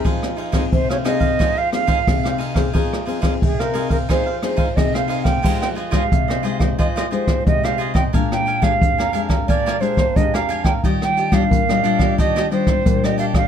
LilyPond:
<<
  \new Staff \with { instrumentName = "Flute" } { \time 4/4 \key f \minor \tempo 4 = 89 r4 c''16 des''16 ees''8. f''16 f''4 r8 | r4 aes'16 bes'8 bes'16 c''8 c''8 ees''16 f''8 g''16~ | g''16 g''8 f''4~ f''16 ees''8 c''8 ees''16 f''8 g''16~ | g''16 g''8 f''8. r8 d''8 c''8 ees''16 f''8 g''16~ |
g''16 g''8 f''4~ f''16 ees''8 c''8. ees''16 f''16 f''16 | }
  \new Staff \with { instrumentName = "Cavaquinho" } { \time 4/4 \key f \minor <ees' aes' c'' f''>8 <ees' aes' c'' f''>16 <ees' aes' c'' f''>16 r16 <aes' c'' f''>16 <ees' aes' c'' f''>16 <aes' c'' f''>16 <ees' aes' c'' f''>16 <aes' c'' f''>8 <ees' aes' c'' f''>16 r16 <aes' c'' f''>16 <ees' aes' c'' f''>16 <aes' c'' f''>16 | <ees' aes' c'' f''>8 <ees' aes' c'' f''>16 <ees' aes' c'' f''>16 r16 <aes' c'' f''>16 <ees' aes' c'' f''>16 <aes' c'' f''>16 <ees' aes' c'' f''>16 <aes' c'' f''>8 <ees' aes' c'' f''>16 r16 <aes' c'' f''>16 <ees' aes' c'' f''>16 <aes' c'' f''>16 | <f' aes' c'' ees''>8 <f' aes' c'' ees''>16 <f' aes' c'' ees''>16 r16 <aes' c'' ees''>16 <f' aes' c'' ees''>16 <aes' c'' ees''>16 <f' aes' c'' ees''>16 <f' aes' c'' ees''>16 <f' aes' c'' ees''>8. <aes' c'' ees''>16 <f' aes' c'' ees''>16 <aes' c'' ees''>16 | <d' bes' f'' aes''>8 <d' bes' f'' aes''>16 <d' bes' f'' aes''>16 r16 <bes' f'' aes''>16 <d' bes' f'' aes''>16 <bes' f'' aes''>16 <d' bes' f'' aes''>16 <d' bes' f'' aes''>16 <d' bes' f'' aes''>8. <bes' f'' aes''>16 <d' bes' f'' aes''>16 <bes' f'' aes''>16 |
<g' d'' ees''>8 <d' g' d'' ees''>16 <d' g' d'' ees''>16 r16 <g' d'' ees''>16 <d' g' d'' ees''>16 <g' d'' ees''>16 <d' g' d'' ees''>16 <d' g' d'' ees''>16 <g' d'' ees''>8. <g' d'' ees''>16 <d' g' d'' ees''>16 <g' d'' ees''>16 | }
  \new Staff \with { instrumentName = "Nylon-string guitar" } { \time 4/4 \key f \minor << { <c' ees' aes'>8 r16 <c' ees' aes'>8. <c' ees' aes'>8. r16 <c' ees' aes'>16 r16 <c' ees' aes'>8 r16 <c' ees' aes'>16 | <c' ees' aes'>16 r16 <c' ees' aes'>16 <c' ees' aes'>8. <c' ees' aes'>16 r16 <c' ees' aes'>16 r16 <c' ees' aes'>16 r16 <c' ees' aes'>4 | <aes ees' g'>8 r16 <aes ees' g'>8. <aes ees' g'>8. r16 <aes ees' g'>8 <aes ees' g'>8. r16 | <aes d'>8. <aes d' g'>8. <aes d' g'>4 <aes d' g'>16 r16 <aes d' g'>8. r16 |
<g f'>8. <g d' f'>8 <g d' f'>16 <g d' f'>4 <g d' f'>8 <g d' f'>4 | } \\ { f4 c4 f4 c4 | f4 c4 f4 c4 | f4 c4 f4 c4 | bes,4 f,4 bes,4 f,4 |
ees4 bes,4 ees4 bes,4 | } >> }
  \new DrumStaff \with { instrumentName = "Drums" } \drummode { \time 4/4 <bd cymr>16 ss16 cymr16 <bd cymr ss>16 <bd cymr>16 ss16 <cymr ss>16 <bd cymr>16 <bd cymr ss>8 <cymr ss>16 <bd cymr>16 <bd cymr ss>16 ss16 cymr16 <bd cymr ss>16 | <bd cymr>16 ss16 cymr16 <bd cymr ss>16 <bd cymr>16 ss16 cymr16 <bd cymr>16 <bd cymr ss>8 <cymr ss>16 <bd cymr>16 <bd cymr ss>16 ss16 cymr16 <bd cymr ss>16 | <cymc bd>16 <hh ss>16 hh16 <hh bd ss>16 <hh bd>16 <hh ss>16 hh16 <bd ss>16 <hh bd>16 <hh ss>16 hh16 <hh bd ss>16 <hh bd>16 ss16 hh16 <bd ss>16 | <hh bd>16 <hh ss>16 hh16 <hh bd ss>16 <hh bd>16 <hh ss>16 hh16 <hh bd ss>16 <hh bd>16 ss16 hh16 <bd ss>16 <hh bd>16 <hh ss>16 hh16 <hh bd ss>16 |
<hh bd>16 <hh ss>16 hh16 <hh bd ss>16 <hh bd>16 <hh ss>16 hh16 <bd ss>16 <hh bd>16 <hh ss>16 hh16 <hh bd ss>16 <hh bd>16 ss16 hh16 <bd ss>16 | }
>>